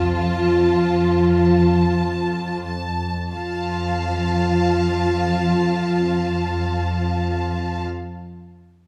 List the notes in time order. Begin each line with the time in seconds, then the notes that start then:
Already playing: F2 F3 F4 A5
0.16 A5
0.75 F2
1.35 A5
2.00 F2
2.65 A5
3.33 F2 F3 F4 F5 A5